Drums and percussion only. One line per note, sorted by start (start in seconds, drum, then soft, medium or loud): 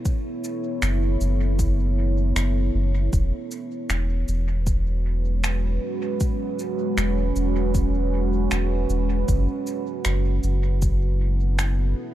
0.05 kick loud
0.05 shaker medium
0.44 shaker soft
0.82 finger snap medium
0.82 shaker medium
1.21 shaker soft
1.59 kick loud
1.59 shaker medium
2.36 finger snap medium
2.36 shaker medium
3.13 kick loud
3.13 shaker soft
3.51 shaker soft
3.90 finger snap medium
3.90 shaker medium
4.28 shaker soft
4.67 kick loud
4.67 shaker medium
5.44 finger snap medium
5.44 shaker medium
6.20 kick loud
6.20 shaker soft
6.59 shaker soft
6.98 finger snap medium
6.98 shaker medium
7.36 shaker soft
7.75 kick loud
7.75 shaker medium
8.51 finger snap medium
8.51 shaker medium
8.90 shaker soft
9.28 kick loud
9.28 shaker medium
9.67 shaker soft
10.05 finger snap medium
10.05 shaker medium
10.43 shaker soft
10.82 kick loud
10.82 shaker medium
11.59 finger snap medium
11.59 shaker medium